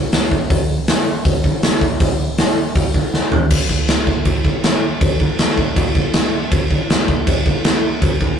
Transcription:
0.12 snare, open hi-hat
0.31 kick
0.50 kick, open hi-hat
0.88 snare, open hi-hat
1.25 kick, open hi-hat
1.44 kick
1.63 snare, open hi-hat
1.81 kick
2.00 kick, open hi-hat
2.38 snare, open hi-hat
2.75 kick, open hi-hat
2.94 kick
3.14 snare
3.32 floor tom
3.51 kick, crash
3.69 kick
3.88 snare, crash
4.07 kick
4.25 kick, crash
4.45 kick
4.64 snare, crash
5.01 kick, crash
5.20 kick
5.39 snare, crash
5.58 kick
5.76 kick, crash
5.95 kick
6.13 snare, crash
6.52 kick, crash
6.71 kick
6.90 snare, crash
7.08 kick
7.27 kick, crash
7.46 kick
7.64 snare, crash
8.02 kick, crash
8.21 kick

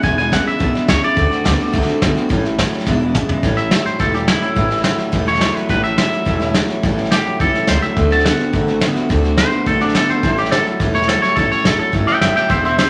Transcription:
0.02 E1 E2 B2 E3 G#3 D4 E4 G#5, kick, snare
0.17 E3 G#3 D4 E4 G#5, snare
0.30 E2 C#3 E3 G#3 D4 E4 F#5, kick, snare, hi-hat pedal
0.45 E3 G#3 D4 E4 E5, muted upright bass stroke, snare
0.59 B1 E2 B2 E3 G#3 D4 E4, kick, snare
0.73 E3 G#3 D4 E4, muted upright bass stroke, snare
0.87 C#2 E2 C#3 E3 G#3 C#5, kick, snare, hi-hat pedal
1.02 E3 G#3 D4 E4 D5, snare
1.16 D2 D3 A3 C4 F#4, kick, snare
1.31 A3 C4 F#4, muted upright bass stroke, snare
1.44 D2 D3 A3 B3 C4 F#4, kick, snare, hi-hat pedal
1.58 A3 C4 F#4, muted upright bass stroke, snare
1.67 snare
1.72 C2 D3 A3 C4 F#4, kick, snare
1.81 snare
1.87 C4 F#4, muted upright bass stroke, snare
1.91 A3
2.01 B1 D3 A3 B3 C4 F#4, kick, snare, hi-hat pedal
2.15 A3 C4 F#4, snare
2.29 A1 A2 E3 G3 C#4 E4, kick, snare
2.43 G3 C#4 E4, snare
2.58 A2 E3 F#3 G3 C#4 E4, kick, snare, hi-hat pedal
2.72 G3 C#4 E4, muted upright bass stroke, snare
2.80 snare
2.86 E1 E2 B2 E3 G#3 D4 E4, kick, snare
3.00 E3 G#3 D4 E4
3.14 E2 C#3 E3 G#3 D4 E4, kick, hi-hat pedal, mid tom
3.29 E3 G#3 D4 E4, muted upright bass stroke, floor tom
3.43 A1 A2 E3 G3 C#4 E4, kick, snare
3.57 G3 C#4 E4 E5, snare
3.71 A2 E3 F#3 G3 E4, snare, hi-hat pedal
3.84 G3 C#4 E4 C5, muted upright bass stroke, snare
3.99 E1 A2 E3 G3 C#4 E4 A4, kick, snare
4.12 G3 C#4 E4 G4, snare
4.27 A2 E3 F#3 G3 C#4 E4, snare, hi-hat pedal
4.42 G3 C#4 E4, muted upright bass stroke, snare
4.56 A1 A2 E3 G3 C#4 E4, kick, snare
4.68 G3 C#4 E4, snare
4.77 snare
4.84 A2 E3 F#3 G3 C#4 E4, snare, hi-hat pedal
4.98 G3 C#4 E4, muted upright bass stroke, snare
5.12 E1 A2 E3 G3 C#4 E4, kick, snare
5.26 G3 C#4 E4 C#5, snare
5.34 snare
5.39 A2 E3 F#3 G3 C#4 E4, snare, hi-hat pedal
5.53 G3 C#4 E4 B4, muted upright bass stroke, snare
5.69 A1 A2 E3 G3 C#4 E4 B4, kick, snare
5.83 G3 C#4 E4 E5, snare
5.97 A2 E3 F#3 G3 C#4 E4 E5, snare, hi-hat pedal
6.12 G3 C#4 E4, muted upright bass stroke, snare
6.25 E1 A2 E3 G3 C#4 E4, kick, snare
6.40 G3 C#4 E4, snare
6.54 A2 E3 F#3 G3 C#4 E4, snare, hi-hat pedal
6.68 G3 C#4 E4, muted upright bass stroke, snare
6.83 A1 A2 E3 G3 C#4 E4, kick, snare
6.97 G3 C#4 E4, snare
7.05 snare
7.11 A2 E3 F#3 G3 C#4 G4, snare, hi-hat pedal
7.15 E4
7.25 G3 C#4 E4, muted upright bass stroke, snare
7.40 B1 A2 E3 G3 C#4 E4 A4, kick, snare
7.53 G3 C#4 E4, muted upright bass stroke, snare
7.67 C#2 A2 E3 F#3 G3 C#4 C5, snare, hi-hat pedal
7.71 E4
7.82 G3 C#4 E4 E5, muted upright bass stroke, snare
7.96 D2 D3 A3 C4 F#4, kick, snare
8.10 A3 C4 F#4 A5, snare
8.19 snare
8.24 D3 A3 B3 C4 F#4 F#5, snare, hi-hat pedal
8.39 A3 C4 F#4, snare
8.53 A1 D3 A3 C4 F#4, kick, snare
8.67 A3 C4 F#4, snare
8.80 D3 A3 B3 C4 F#4, snare, hi-hat pedal
8.94 C4 F#4, muted upright bass stroke, snare
8.98 A3
9.09 D2 D3 A3 C4 F#4, kick, snare
9.22 A3 C4 F#4, snare
9.37 D3 A3 B3 C4 F#4 C5, snare, hi-hat pedal
9.52 A3 C4 F#4, snare
9.66 A1 D3 A3 C4 F#4 A4, kick, snare
9.80 A3 C4 D4 F#4, snare
9.89 snare
9.94 D3 A3 B3 C4 F#4 A4, snare, hi-hat pedal
10.08 A3 C4 F#4 C5, muted upright bass stroke, snare
10.23 A1 A2 E3 G3 C#4 E4, kick, snare
10.37 G3 C#4 E4 G4, snare
10.45 snare
10.51 A2 E3 F#3 G3 C#4 E4 A4, snare, hi-hat pedal
10.65 G3 C#4 E4, muted upright bass stroke, snare
10.80 E1 A2 E3 G3 C#4 E4, kick, snare
10.93 G3 C#4 E4 C#5, snare
11.02 snare
11.08 A2 E3 F#3 G3 C#4 E4 A4, snare, hi-hat pedal
11.22 G3 C#4 E4 C#5, muted upright bass stroke, snare
11.36 A1 A2 E3 G3 C#4 E4 A4, kick, snare
11.50 G3 C#4 E4 C#5, muted upright bass stroke, snare
11.59 snare
11.63 A1 A2 E3 F#3 G3 C#4 E4 A4, snare, hi-hat pedal
11.78 G3 C#4 E4 A4, muted upright bass stroke, snare
11.92 G1 A2 E3 G3 C#4 E4, kick, snare
12.06 G3 C#4 E4 E5 G5, muted upright bass stroke, snare
12.21 F#1 A2 E3 F#3 G3 C#4 E4 E5 G5, snare, hi-hat pedal
12.35 G3 C#4 E4 E5 G5, muted upright bass stroke, snare
12.49 E1 E2 B2 E3 G#3 D4 E4 C5 E5, kick, snare
12.63 E3 G#3 D4 E4 C5 E5, snare
12.77 E2 C#3 E3 G#3 D4 E4 C5 E5, snare, hi-hat pedal

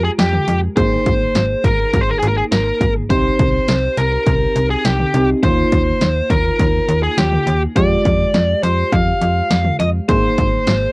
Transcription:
Already playing: G#3 F4 G4
0.04 G#4
0.19 F2 G4, snare, closed hi-hat
0.33 mid tom
0.48 F2, closed hi-hat
0.77 G#1 A#3 D#4 G#4 C5, kick, closed hi-hat
1.06 G#1, kick, closed hi-hat
1.35 G#1, snare, closed hi-hat
1.64 G#1 A#4, kick, closed hi-hat
1.93 G#1, kick, closed hi-hat
2.01 C5
2.10 A#4
2.19 G#1 G#4, closed hi-hat
2.28 A#4
2.37 G#4
2.52 G#1 A#4, snare, closed hi-hat
2.81 G#1, kick, closed hi-hat
3.10 C2 C4 D#4 G4 C5, kick, closed hi-hat
3.39 C2, kick, closed hi-hat
3.68 C2, snare, closed hi-hat
3.97 C2 A#4, closed hi-hat
4.26 C2, kick, closed hi-hat
4.56 C2, closed hi-hat
4.70 G#4
4.85 C2 G4, snare, closed hi-hat
4.99 mid tom
5.14 C2 C4 D#4 G4, closed hi-hat
5.43 D#2 A#3 D#4 F4 C5, kick, closed hi-hat
5.72 D#2, kick, closed hi-hat
6.01 D#2, snare, closed hi-hat
6.30 D#2 A#4, kick, closed hi-hat
6.59 D#2, kick, closed hi-hat
6.88 D#2, closed hi-hat
7.03 G#4
7.18 D#2 G4, snare, closed hi-hat
7.32 mid tom
7.47 D#2, closed hi-hat
7.76 F2 G#3 F4 G4 D5, kick, closed hi-hat
8.05 F2, kick, closed hi-hat
8.34 F2, snare, closed hi-hat
8.63 F2 C5, closed hi-hat
8.92 F2 F5, kick, closed hi-hat
9.22 F2, closed hi-hat
9.51 F2, snare, closed hi-hat
9.65 mid tom
9.80 F2 D#5, closed hi-hat
10.09 G#1 A#3 D#4 G#4 C5, kick, closed hi-hat
10.38 G#1, kick, closed hi-hat
10.67 G#1, snare, closed hi-hat

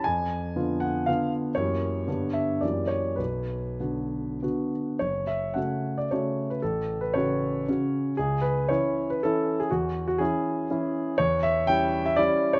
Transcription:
0.04 F2 G#5
0.56 D3 B3 F4
0.80 F#5
1.06 D3 B3 F4 F5
1.55 F#2 E3 A#3 G4 C#5
2.07 G2 D3 B3 G4
2.33 E5
2.61 F#2 E3 A#3 G4 D5
2.87 C#5
3.16 B1 B4
3.80 D3 B3 F#4
4.42 D3 B3 F#4
4.99 F#1 C#5
5.27 E5
5.54 C#3 A3 F#4 F#5
5.98 D5
6.11 C#3 A3 F#4 C#5
6.50 B4
6.62 A1 A4
7.01 B4
7.14 C#3 C#4 F#4 C#5
7.68 C#3 C#4 F#4
8.17 C#2 G#4
8.41 B4
8.69 E3 C#4 E4 C#5
9.10 B4
9.23 E3 C#4 E4 A4
9.60 G#4
9.71 E2 F#4
10.08 F#4
10.18 E3 C#4 E4 G#4
10.71 E3 C#4 E4
11.18 E2 C#5
11.43 E5
11.67 G3 C#4 E4 G5
12.06 E5
12.16 G3 C#4 E4 D5
12.53 C#5

